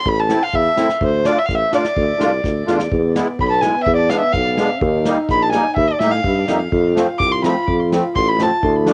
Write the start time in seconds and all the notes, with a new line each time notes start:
0.06 A1 B5, kick
0.20 A5
0.28 A3 C4 E4, snare
0.43 F5
0.53 E2 E5, kick
0.76 A3 C4 E4, snare
0.89 snare
1.01 D2 C5, kick
1.25 A3 D4 F4 D5, snare
1.39 E5
1.45 A1 F5, kick
1.49 snare
1.55 E5
1.72 A3 D4 F4 D5, snare
1.84 snare
1.96 D2, kick
2.18 C2 A3 D4 F4, snare
2.43 D2, kick, snare
2.66 E2 A3 D4 F4, snare
2.79 snare
2.91 E2 B3, kick
3.15 G#3 B3 E4, snare
3.39 B1 B5, kick
3.47 A5 B5
3.61 G#3 B3 E4 G#5, snare
3.84 E2 E5, kick
3.96 D5
4.09 G#3 B3 D4 F5, snare
4.20 E5
4.32 B1 F5, kick, snare
4.57 G#3 B3 D4, snare
4.81 D#2 D#4, kick
5.05 G3 A#3 D#4, snare
5.29 A#1 B5, kick, snare
5.42 A5
5.52 G3 A#3 D#4 G#5, snare
5.77 D#2 E5, kick
5.88 D5
5.99 A2 G3 A#3 D#4 E5, snare
6.11 F5
6.24 G2, kick
6.47 F2 G3 A#3 D#4, snare
6.72 F2 F4, kick
6.95 F3 A3 C4, snare
7.19 C2 D6, kick
7.32 C6
7.42 F3 A3 C4 B5, snare
7.68 F2, kick
7.91 F3 A3 C4, snare
8.15 A1 C6, kick
8.28 B5
8.38 F3 A3 C4, snare
8.42 A5
8.63 D2 E4, kick
8.84 F3 A3 D4, snare